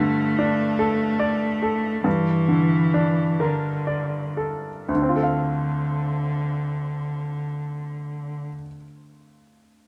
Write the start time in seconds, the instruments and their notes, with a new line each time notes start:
Already playing: upright piano G2, cello A3
0.00 upright piano D3
0.38 upright piano D4
0.79 upright piano A4
1.20 upright piano D5
1.62 upright piano A4
2.04 upright piano G2, cello E3
2.48 upright piano D3
2.94 upright piano D4
3.40 cello D3, upright piano A#4
3.87 upright piano D5
4.37 upright piano A4
4.88 upright piano D2, cello D3
4.95 upright piano D3
5.02 upright piano C4
5.09 upright piano F4
5.16 upright piano A4
5.23 upright piano F5